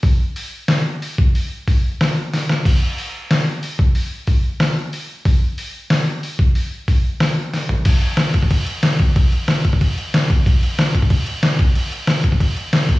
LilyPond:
\new DrumStaff \with { instrumentName = "Drums" } \drummode { \time 4/4 \tempo 4 = 185 <hho bd>4 hho4 <hho sn>4 hho8 bd8 | hho4 <hho bd>4 <hho sn>4 <hho sn>8 sn8 | <cymc bd>4 hho4 <hho sn>4 hho8 bd8 | hho4 <hho bd>4 <hho sn>4 hho4 |
<hho bd>4 hho4 <hho sn>4 hho8 bd8 | hho4 <hho bd>4 <hho sn>4 <hho sn>8 tomfh8 | <cymc bd>8 cymc8 <cymc sn>8 <cymc bd>16 bd16 <cymc bd>8 cymc8 <cymc sn>8 <cymc bd>8 | <cymc bd>8 cymc8 <cymc sn>8 <cymc bd>16 bd16 <cymc bd>8 cymc8 <cymc sn>8 <cymc bd>8 |
<cymc bd>8 cymc8 <cymc sn>8 <cymc bd>16 bd16 <cymc bd>8 cymc8 <cymc sn>8 <cymc bd>8 | cymc8 cymc8 <cymc sn>8 <cymc bd>16 bd16 <cymc bd>8 cymc8 <cymc sn>8 <cymc bd>8 | }